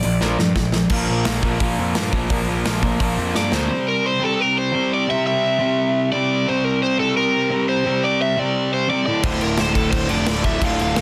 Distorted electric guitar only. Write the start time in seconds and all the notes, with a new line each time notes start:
0.03 A#2 F3
0.21 A#2 F3 A#3
0.38 A#2 F3
0.56 A#2 F3
0.73 A#2 F3
0.90 A#2 F3 A#3
1.25 A#2 F3 A#3
1.43 A#2 F3 A#3
1.59 A#2 F3 A#3
1.94 A#2 F3 A#3
2.13 A#2 F3 A#3
2.30 A#2 F3 A#3
2.66 A#2 F3 A#3
2.82 A#2 F3 A#3
3.01 A#2 F3 A#3
3.36 A#2 F3 A#3
3.52 A#2 F3 A#3
3.68 C3 G3 C4
4.20 C3 G3 C4
4.72 C3 G3 C4
5.07 C3 G3 C4
5.59 C3 G3 C4
6.12 C3 G3 C4
6.47 C3 G3 C4
6.98 C3 G3 C4
7.50 C3 G3 C4
7.84 C3 G3 C4
8.37 C3 G3 C4
8.88 C3 G3 C4
9.06 D2 A2 D3
9.58 D2 A2 D3
10.09 D2 A2 D3
10.44 D2 A2 D3
10.96 D2 A2 D3